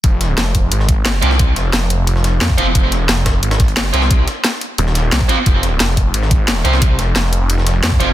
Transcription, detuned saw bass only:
X:1
M:4/4
L:1/8
Q:1/4=177
K:Fm
V:1 name="Detuned saw bass" clef=bass
F,,,2 F,,,2 A,,,3 C,,- | C,, F,,,4- F,,, F,, F,,, | F,,,2 F,,,2 A,,,3 C,,- | C,, z3 E,,,2 C,, z |
F,,,2 F,,,2 A,,,3 C,,- | C,, F,,,4- F,,, F,, F,,, |]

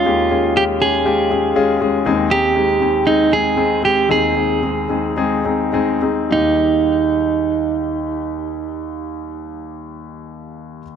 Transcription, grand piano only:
X:1
M:4/4
L:1/8
Q:1/4=109
K:Eb
V:1 name="Grand piano"
[A,_DFG] [A,DFA] [A,DFG] [A,DFG] [A,DFG] [A,DFA] [A,DFA] [A,DFA] | [A,CEA] [A,CEA] [A,CEA] [A,CEA] [A,CEA] [A,CEA] [A,CEA] [A,CEA] | [A,CEA] [A,CEA] [A,CEA] [A,CEA] [A,CEA] [A,CEA] [A,CEA] [A,CEA] | [G,B,EG]8- |
[G,B,EG]8 |]
V:2 name="Grand piano" clef=bass
[E,,E,]8 | [E,,E,]8 | [E,,E,]8 | E,,8- |
E,,8 |]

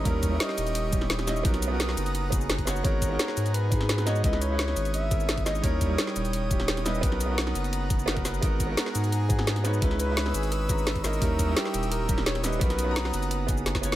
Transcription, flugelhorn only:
X:1
M:4/4
L:1/8
Q:1/4=172
K:G#m
V:1 name="Flugelhorn"
A2 d4 z2 | z8 | c4 B3 d | d c3 e3 d |
c3 c4 B- | B3 z4 z | z2 F2 G3 B- | B B2 G B3 A- |
A2 =G2 A2 c B- | B6 z2 |]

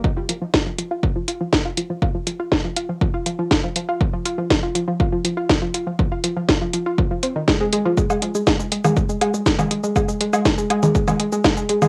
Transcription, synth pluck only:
X:1
M:4/4
L:1/16
Q:1/4=121
K:Fm
V:1 name="Synth pluck" clef=bass
F, F F, F, F F, F, F F, F, F F, F, F F, F, | F F, F, F F, F, F F, F, F F, F, F F, F, F | F, F, F F, F, F F, F, F F, F, F F, F, F F, | F, F F, F, F F, F, F F, F, C E, A, A, A, F, |
A, A, A, A, A, A, A, A, A, A, A, A, A, A, A, A, | A, A, A, A, A, A, A, A, A, A, A, A, A, A, A, A, |]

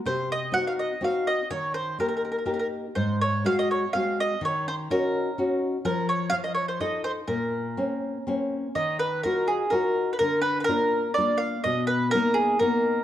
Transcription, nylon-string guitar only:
X:1
M:3/4
L:1/8
Q:1/4=125
K:Bbm
V:1 name="Nylon-string guitar"
C,2 [CEG]2 [CEG]2 | E,2 [B,E=G]2 [B,EG]2 | A,,2 [A,CG]2 [A,CG]2 | E,2 [DEG]2 [DEG]2 |
F,2 F,2 [EF=A]2 | B,,2 [B,CD]2 [B,CD]2 | [K:Ebm] E,2 [EFG]2 [EFG]2 | =D,2 [B,=DF]2 [B,DF]2 |
=B,,2 [^A,=B,^D]2 [A,B,D]2 |]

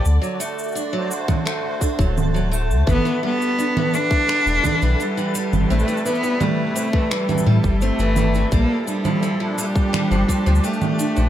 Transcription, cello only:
X:1
M:4/4
L:1/8
Q:1/4=85
K:G
V:1 name="Cello"
z8 | B, B,2 D3 G,2 | A, B, A,2 G, G, A,2 | _B, G,2 G,3 A,2 |]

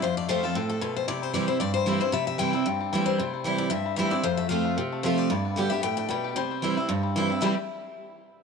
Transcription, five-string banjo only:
X:1
M:4/4
L:1/8
Q:"Swing" 1/4=228
K:C
V:1 name="Five-string banjo"
F A, G F C A, F C | E G, G E C G, E C | G,2 E G, C G, E G, | E G, G E C G, E C |
F A, G F C A, F C | G, B, G B, G D G, G | G, C E G, C G, E G, | [G,CEG] z6 z |]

